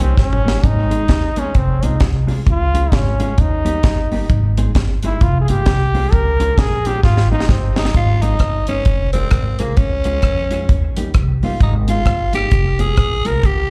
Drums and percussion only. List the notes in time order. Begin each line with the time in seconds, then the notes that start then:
0.17 kick, snare
0.33 mid tom
0.48 snare
0.63 kick, closed hi-hat
0.91 closed hi-hat
1.08 kick, snare, closed hi-hat
1.36 closed hi-hat
1.55 kick, closed hi-hat
1.83 closed hi-hat
2.00 kick, snare, closed hi-hat
2.28 open hi-hat
2.47 kick, closed hi-hat
2.75 closed hi-hat
2.92 kick, snare, closed hi-hat
3.20 closed hi-hat
3.38 kick, closed hi-hat
3.66 closed hi-hat
3.83 kick, snare, closed hi-hat
4.12 open hi-hat
4.30 kick, closed hi-hat
4.57 closed hi-hat
4.75 kick, snare, closed hi-hat
5.03 closed hi-hat
5.21 kick, closed hi-hat
5.48 closed hi-hat
5.66 kick, snare, closed hi-hat
5.95 open hi-hat
6.13 kick, closed hi-hat
6.40 closed hi-hat
6.58 kick, snare, closed hi-hat
6.85 closed hi-hat
7.03 kick, snare
7.17 snare
7.40 snare
7.49 kick, snare
7.76 snare
7.85 snare
7.94 kick, closed hi-hat
8.22 closed hi-hat
8.39 kick, cross-stick, closed hi-hat
8.67 closed hi-hat
8.85 kick, closed hi-hat
9.13 closed hi-hat
9.31 kick, cross-stick, closed hi-hat
9.59 closed hi-hat
9.77 kick, closed hi-hat
10.04 closed hi-hat
10.22 kick, cross-stick, closed hi-hat
10.51 closed hi-hat
10.69 kick, closed hi-hat
10.97 closed hi-hat
11.14 kick, cross-stick, closed hi-hat
11.43 open hi-hat
11.61 kick, closed hi-hat
11.88 closed hi-hat
12.06 kick, cross-stick, closed hi-hat
12.33 closed hi-hat
12.51 kick, closed hi-hat
12.79 closed hi-hat
12.97 kick, cross-stick, closed hi-hat
13.25 closed hi-hat
13.43 kick, closed hi-hat